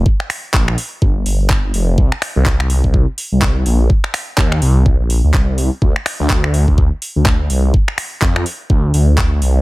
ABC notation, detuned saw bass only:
X:1
M:4/4
L:1/16
Q:"Swing 16ths" 1/4=125
K:Gm
V:1 name="Detuned saw bass" clef=bass
z4 B,,,2 z2 G,,,2 G,,,4 F,,,2 | C,, z2 C,,4 C,,2 z2 C,,3 B,,,2 | z4 E,,2 C,,2 C,, B,,,2 D,, C,,3 z | D,, z2 D,,4 D,,2 z2 D,,3 C,,2 |
z4 F,,2 z2 D,,2 D,,4 C,,2 |]